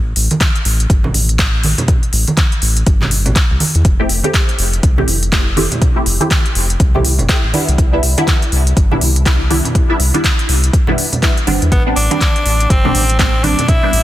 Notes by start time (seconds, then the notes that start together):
Already playing: A1
0.16 A1, open hi-hat
0.31 closed hi-hat, high conga
0.41 kick, clap, closed hi-hat
0.55 closed hi-hat
0.65 A1, open hi-hat
0.80 closed hi-hat
0.90 G1, kick, closed hi-hat
1.04 high conga, low conga
1.14 A1, open hi-hat
1.29 closed hi-hat
1.39 kick, clap, closed hi-hat
1.63 open hi-hat, high conga
1.78 closed hi-hat, low conga
1.88 kick, closed hi-hat, low conga
2.03 closed hi-hat
2.13 A1, open hi-hat
2.28 closed hi-hat, high conga
2.37 kick, clap, closed hi-hat
2.52 closed hi-hat
2.62 A1, open hi-hat
2.77 closed hi-hat
2.86 G1, kick, closed hi-hat
3.01 clap, high conga, low conga
3.11 open hi-hat
3.26 A1, closed hi-hat, low conga
3.36 kick, clap, closed hi-hat
3.50 C2
3.60 open hi-hat, high conga
3.75 E2, closed hi-hat
3.85 F1, kick, closed hi-hat
3.99 A3 C4 E4 G4
4.09 F1, open hi-hat
4.24 A3 C4 E4 G4, closed hi-hat, high conga
4.34 kick, clap, closed hi-hat
4.49 closed hi-hat
4.59 F1, open hi-hat
4.73 closed hi-hat
4.83 C2, kick, closed hi-hat
4.98 A3 C4 E4 G4, high conga, low conga
5.08 F1, open hi-hat
5.23 closed hi-hat
5.32 A3 C4 E4 G4, kick, clap, closed hi-hat
5.56 A3 C4 E4 G4, open hi-hat, high conga
5.72 closed hi-hat, low conga
5.82 kick, closed hi-hat, low conga
5.96 A3 C4 E4 G4
6.06 F1, open hi-hat
6.20 A3 C4 E4 G4, closed hi-hat, high conga
6.31 kick, clap, closed hi-hat
6.46 closed hi-hat
6.55 F1, open hi-hat
6.70 closed hi-hat
6.80 C2, kick, closed hi-hat
6.94 A3 C4 E4 G4, high conga, low conga
7.05 open hi-hat
7.19 F1, closed hi-hat, low conga
7.29 A3 C4 E4 G4, kick, clap, closed hi-hat
7.44 A1
7.54 G3 B3 D4 E4, open hi-hat, high conga
7.68 C2, closed hi-hat
7.78 C2, kick, closed hi-hat
7.93 G3 B3 D4 E4
8.03 C2, open hi-hat
8.18 G3 B3 D4 E4, closed hi-hat, high conga
8.28 kick, clap, closed hi-hat
8.42 closed hi-hat
8.52 C2, open hi-hat
8.67 closed hi-hat
8.77 G1, kick, closed hi-hat
8.91 G3 B3 D4 E4, high conga, low conga
9.01 C2, open hi-hat
9.16 closed hi-hat
9.26 G3 B3 D4 E4, kick, clap, closed hi-hat
9.50 G3 B3 D4 E4, open hi-hat, high conga
9.65 closed hi-hat, low conga
9.75 kick, closed hi-hat, low conga
9.89 G3 B3 D4 E4
10.00 C2, open hi-hat
10.14 G3 B3 D4 E4, closed hi-hat, high conga
10.24 kick, clap, closed hi-hat
10.39 closed hi-hat
10.49 C2, open hi-hat
10.64 closed hi-hat
10.73 kick, closed hi-hat
10.87 G3 B3 D4 E4, high conga, low conga
10.98 open hi-hat
11.12 closed hi-hat, low conga
11.22 G3 B3 D4 E4, kick, clap, closed hi-hat
11.37 closed hi-hat
11.47 G1 G3 B3 C4 D4, open hi-hat, high conga
11.62 E2, closed hi-hat
11.72 A1 B3, kick, closed hi-hat
11.86 G3 B3 C4 D4
11.96 A1 D4, open hi-hat
12.11 G3 B3 C4 D4, closed hi-hat, high conga
12.21 kick, clap, closed hi-hat
12.36 closed hi-hat
12.45 A1, open hi-hat
12.60 closed hi-hat
12.70 G1 C4, kick, closed hi-hat
12.85 G3 B3 C4 D4, high conga, low conga
12.95 A1, open hi-hat
13.10 closed hi-hat
13.19 G3 B3 C4 D4, kick, clap, closed hi-hat
13.44 G3 B3 C4 D4, open hi-hat, high conga
13.59 closed hi-hat, low conga
13.68 E4, kick, closed hi-hat, low conga
13.83 G3 B3 C4 D4
13.93 A1, open hi-hat